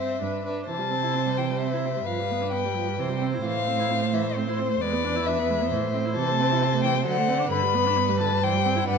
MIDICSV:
0, 0, Header, 1, 5, 480
1, 0, Start_track
1, 0, Key_signature, 0, "major"
1, 0, Tempo, 463320
1, 701, Time_signature, 3, 2, 24, 8
1, 3572, Tempo, 452830
1, 9436, End_track
2, 0, Start_track
2, 0, Title_t, "Violin"
2, 0, Program_c, 0, 40
2, 0, Note_on_c, 0, 76, 44
2, 464, Note_off_c, 0, 76, 0
2, 703, Note_on_c, 0, 81, 53
2, 1426, Note_on_c, 0, 79, 39
2, 1442, Note_off_c, 0, 81, 0
2, 1656, Note_off_c, 0, 79, 0
2, 1662, Note_on_c, 0, 76, 44
2, 2142, Note_on_c, 0, 77, 49
2, 2158, Note_off_c, 0, 76, 0
2, 2612, Note_off_c, 0, 77, 0
2, 2618, Note_on_c, 0, 79, 47
2, 3319, Note_off_c, 0, 79, 0
2, 3578, Note_on_c, 0, 77, 64
2, 4300, Note_on_c, 0, 76, 49
2, 4316, Note_off_c, 0, 77, 0
2, 4544, Note_on_c, 0, 72, 55
2, 4560, Note_off_c, 0, 76, 0
2, 5018, Note_on_c, 0, 74, 65
2, 5034, Note_off_c, 0, 72, 0
2, 5497, Note_on_c, 0, 76, 60
2, 5513, Note_off_c, 0, 74, 0
2, 6214, Note_off_c, 0, 76, 0
2, 6455, Note_on_c, 0, 81, 69
2, 7125, Note_off_c, 0, 81, 0
2, 7166, Note_on_c, 0, 79, 60
2, 7401, Note_off_c, 0, 79, 0
2, 7407, Note_on_c, 0, 78, 70
2, 7887, Note_off_c, 0, 78, 0
2, 7901, Note_on_c, 0, 83, 81
2, 8602, Note_off_c, 0, 83, 0
2, 8614, Note_on_c, 0, 81, 62
2, 8857, Note_on_c, 0, 79, 73
2, 8873, Note_off_c, 0, 81, 0
2, 9329, Note_off_c, 0, 79, 0
2, 9335, Note_on_c, 0, 78, 76
2, 9436, Note_off_c, 0, 78, 0
2, 9436, End_track
3, 0, Start_track
3, 0, Title_t, "Violin"
3, 0, Program_c, 1, 40
3, 0, Note_on_c, 1, 72, 28
3, 221, Note_off_c, 1, 72, 0
3, 254, Note_on_c, 1, 71, 27
3, 474, Note_off_c, 1, 71, 0
3, 479, Note_on_c, 1, 71, 30
3, 707, Note_off_c, 1, 71, 0
3, 713, Note_on_c, 1, 72, 32
3, 2105, Note_off_c, 1, 72, 0
3, 2142, Note_on_c, 1, 71, 32
3, 3109, Note_on_c, 1, 72, 38
3, 3125, Note_off_c, 1, 71, 0
3, 5018, Note_on_c, 1, 71, 44
3, 5034, Note_off_c, 1, 72, 0
3, 5974, Note_off_c, 1, 71, 0
3, 5986, Note_on_c, 1, 72, 48
3, 7864, Note_off_c, 1, 72, 0
3, 7891, Note_on_c, 1, 71, 50
3, 8847, Note_on_c, 1, 72, 48
3, 8863, Note_off_c, 1, 71, 0
3, 9324, Note_off_c, 1, 72, 0
3, 9330, Note_on_c, 1, 71, 49
3, 9436, Note_off_c, 1, 71, 0
3, 9436, End_track
4, 0, Start_track
4, 0, Title_t, "Viola"
4, 0, Program_c, 2, 41
4, 0, Note_on_c, 2, 60, 28
4, 211, Note_off_c, 2, 60, 0
4, 217, Note_on_c, 2, 62, 27
4, 455, Note_off_c, 2, 62, 0
4, 467, Note_on_c, 2, 62, 28
4, 701, Note_off_c, 2, 62, 0
4, 714, Note_on_c, 2, 52, 30
4, 815, Note_on_c, 2, 55, 28
4, 830, Note_off_c, 2, 52, 0
4, 937, Note_on_c, 2, 60, 30
4, 953, Note_off_c, 2, 55, 0
4, 1067, Note_on_c, 2, 64, 29
4, 1083, Note_off_c, 2, 60, 0
4, 1185, Note_on_c, 2, 60, 29
4, 1200, Note_off_c, 2, 64, 0
4, 1306, Note_on_c, 2, 55, 29
4, 1322, Note_off_c, 2, 60, 0
4, 1429, Note_on_c, 2, 52, 29
4, 1445, Note_off_c, 2, 55, 0
4, 1556, Note_on_c, 2, 55, 28
4, 1571, Note_off_c, 2, 52, 0
4, 1679, Note_on_c, 2, 60, 33
4, 1694, Note_off_c, 2, 55, 0
4, 1790, Note_on_c, 2, 64, 29
4, 1805, Note_off_c, 2, 60, 0
4, 1913, Note_on_c, 2, 60, 29
4, 1929, Note_off_c, 2, 64, 0
4, 2032, Note_on_c, 2, 55, 30
4, 2048, Note_off_c, 2, 60, 0
4, 2141, Note_off_c, 2, 55, 0
4, 2147, Note_on_c, 2, 53, 31
4, 2274, Note_on_c, 2, 55, 28
4, 2289, Note_off_c, 2, 53, 0
4, 2393, Note_on_c, 2, 59, 29
4, 2408, Note_off_c, 2, 55, 0
4, 2508, Note_on_c, 2, 62, 29
4, 2524, Note_off_c, 2, 59, 0
4, 2616, Note_on_c, 2, 59, 31
4, 2632, Note_off_c, 2, 62, 0
4, 2745, Note_on_c, 2, 55, 32
4, 2760, Note_off_c, 2, 59, 0
4, 2853, Note_on_c, 2, 53, 29
4, 2869, Note_off_c, 2, 55, 0
4, 2977, Note_on_c, 2, 55, 31
4, 2992, Note_off_c, 2, 53, 0
4, 3090, Note_off_c, 2, 55, 0
4, 3097, Note_on_c, 2, 52, 33
4, 3204, Note_on_c, 2, 55, 32
4, 3220, Note_off_c, 2, 52, 0
4, 3326, Note_on_c, 2, 60, 33
4, 3342, Note_off_c, 2, 55, 0
4, 3454, Note_on_c, 2, 64, 33
4, 3469, Note_off_c, 2, 60, 0
4, 3564, Note_off_c, 2, 64, 0
4, 3571, Note_on_c, 2, 52, 34
4, 3689, Note_on_c, 2, 57, 31
4, 3704, Note_off_c, 2, 52, 0
4, 3815, Note_on_c, 2, 60, 34
4, 3830, Note_off_c, 2, 57, 0
4, 3939, Note_on_c, 2, 64, 36
4, 3955, Note_off_c, 2, 60, 0
4, 4060, Note_on_c, 2, 60, 34
4, 4076, Note_off_c, 2, 64, 0
4, 4184, Note_on_c, 2, 57, 38
4, 4200, Note_off_c, 2, 60, 0
4, 4295, Note_on_c, 2, 52, 35
4, 4311, Note_off_c, 2, 57, 0
4, 4412, Note_on_c, 2, 57, 36
4, 4428, Note_off_c, 2, 52, 0
4, 4534, Note_on_c, 2, 60, 39
4, 4550, Note_off_c, 2, 57, 0
4, 4664, Note_on_c, 2, 64, 36
4, 4680, Note_off_c, 2, 60, 0
4, 4779, Note_on_c, 2, 60, 41
4, 4795, Note_off_c, 2, 64, 0
4, 4890, Note_on_c, 2, 57, 39
4, 4905, Note_off_c, 2, 60, 0
4, 5013, Note_off_c, 2, 57, 0
4, 5030, Note_on_c, 2, 56, 43
4, 5140, Note_on_c, 2, 59, 39
4, 5156, Note_off_c, 2, 56, 0
4, 5263, Note_on_c, 2, 62, 41
4, 5279, Note_off_c, 2, 59, 0
4, 5383, Note_on_c, 2, 64, 38
4, 5399, Note_off_c, 2, 62, 0
4, 5509, Note_on_c, 2, 62, 40
4, 5525, Note_off_c, 2, 64, 0
4, 5628, Note_on_c, 2, 59, 43
4, 5644, Note_off_c, 2, 62, 0
4, 5744, Note_on_c, 2, 56, 40
4, 5760, Note_off_c, 2, 59, 0
4, 5869, Note_on_c, 2, 59, 39
4, 5885, Note_off_c, 2, 56, 0
4, 5978, Note_off_c, 2, 59, 0
4, 5985, Note_on_c, 2, 52, 46
4, 6101, Note_on_c, 2, 57, 43
4, 6116, Note_off_c, 2, 52, 0
4, 6210, Note_on_c, 2, 60, 42
4, 6226, Note_off_c, 2, 57, 0
4, 6331, Note_on_c, 2, 64, 43
4, 6347, Note_off_c, 2, 60, 0
4, 6445, Note_off_c, 2, 64, 0
4, 6451, Note_on_c, 2, 52, 44
4, 6585, Note_on_c, 2, 57, 46
4, 6601, Note_off_c, 2, 52, 0
4, 6703, Note_on_c, 2, 60, 46
4, 6718, Note_off_c, 2, 57, 0
4, 6822, Note_on_c, 2, 64, 47
4, 6838, Note_off_c, 2, 60, 0
4, 6931, Note_on_c, 2, 60, 44
4, 6947, Note_off_c, 2, 64, 0
4, 7050, Note_on_c, 2, 57, 45
4, 7066, Note_off_c, 2, 60, 0
4, 7166, Note_on_c, 2, 52, 44
4, 7182, Note_off_c, 2, 57, 0
4, 7287, Note_on_c, 2, 57, 40
4, 7303, Note_off_c, 2, 52, 0
4, 7382, Note_off_c, 2, 57, 0
4, 7388, Note_on_c, 2, 54, 44
4, 7520, Note_on_c, 2, 57, 46
4, 7535, Note_off_c, 2, 54, 0
4, 7635, Note_on_c, 2, 60, 48
4, 7651, Note_off_c, 2, 57, 0
4, 7756, Note_on_c, 2, 62, 46
4, 7772, Note_off_c, 2, 60, 0
4, 7874, Note_off_c, 2, 62, 0
4, 7881, Note_on_c, 2, 50, 49
4, 8001, Note_on_c, 2, 55, 45
4, 8017, Note_off_c, 2, 50, 0
4, 8124, Note_on_c, 2, 59, 46
4, 8139, Note_off_c, 2, 55, 0
4, 8252, Note_on_c, 2, 62, 45
4, 8268, Note_off_c, 2, 59, 0
4, 8376, Note_on_c, 2, 59, 49
4, 8392, Note_off_c, 2, 62, 0
4, 8492, Note_on_c, 2, 55, 48
4, 8508, Note_off_c, 2, 59, 0
4, 8618, Note_on_c, 2, 50, 46
4, 8634, Note_off_c, 2, 55, 0
4, 8733, Note_on_c, 2, 55, 40
4, 8749, Note_off_c, 2, 50, 0
4, 8852, Note_off_c, 2, 55, 0
4, 8858, Note_on_c, 2, 52, 45
4, 8968, Note_on_c, 2, 55, 44
4, 8984, Note_off_c, 2, 52, 0
4, 9090, Note_on_c, 2, 60, 45
4, 9106, Note_off_c, 2, 55, 0
4, 9194, Note_on_c, 2, 64, 43
4, 9210, Note_off_c, 2, 60, 0
4, 9316, Note_off_c, 2, 64, 0
4, 9322, Note_on_c, 2, 62, 45
4, 9436, Note_off_c, 2, 62, 0
4, 9436, End_track
5, 0, Start_track
5, 0, Title_t, "Cello"
5, 0, Program_c, 3, 42
5, 0, Note_on_c, 3, 43, 37
5, 137, Note_off_c, 3, 43, 0
5, 215, Note_on_c, 3, 43, 40
5, 623, Note_off_c, 3, 43, 0
5, 710, Note_on_c, 3, 48, 35
5, 2103, Note_off_c, 3, 48, 0
5, 2144, Note_on_c, 3, 43, 37
5, 3097, Note_on_c, 3, 48, 38
5, 3113, Note_off_c, 3, 43, 0
5, 3565, Note_off_c, 3, 48, 0
5, 3571, Note_on_c, 3, 45, 43
5, 4987, Note_off_c, 3, 45, 0
5, 5009, Note_on_c, 3, 40, 46
5, 5973, Note_on_c, 3, 45, 45
5, 5989, Note_off_c, 3, 40, 0
5, 6455, Note_on_c, 3, 48, 52
5, 6471, Note_off_c, 3, 45, 0
5, 7407, Note_on_c, 3, 50, 49
5, 7423, Note_off_c, 3, 48, 0
5, 7879, Note_off_c, 3, 50, 0
5, 7886, Note_on_c, 3, 43, 55
5, 9296, Note_off_c, 3, 43, 0
5, 9319, Note_on_c, 3, 43, 52
5, 9436, Note_off_c, 3, 43, 0
5, 9436, End_track
0, 0, End_of_file